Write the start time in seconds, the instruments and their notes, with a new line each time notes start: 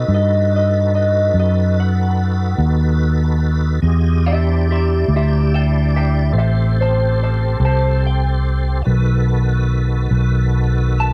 Already playing: tonewheel organ D#4 F#4 A4 B4, clean electric guitar D#5
0.08 fingered electric bass G2
0.14 clean electric guitar D#5
0.56 clean electric guitar D#5
0.95 clean electric guitar D#5
1.34 fingered electric bass F#2
1.40 clean electric guitar D#5
1.80 clean electric guitar F#5
2.58 fingered electric bass D#2
3.82 fingered electric bass E2, tonewheel organ F4 G4 G#4 D#5
4.26 tonewheel organ D4 E4 G4 D5, clean electric guitar G4 E5
4.71 clean electric guitar G4 E5
5.08 fingered electric bass D2
5.16 clean electric guitar G4 E5
5.54 clean electric guitar E5 G5
5.96 clean electric guitar E5 G5
6.32 fingered electric bass A1, tonewheel organ C4 G4 A4 C5
6.38 clean electric guitar E5 G5
6.81 clean electric guitar C5 A5
7.23 clean electric guitar C5 A5
7.60 fingered electric bass C2
7.65 clean electric guitar C5 A5
8.07 clean electric guitar G5
8.84 fingered electric bass B1, tonewheel organ D#3 F#4 A4 B4
10.11 fingered electric bass B1
11.00 clean electric guitar A5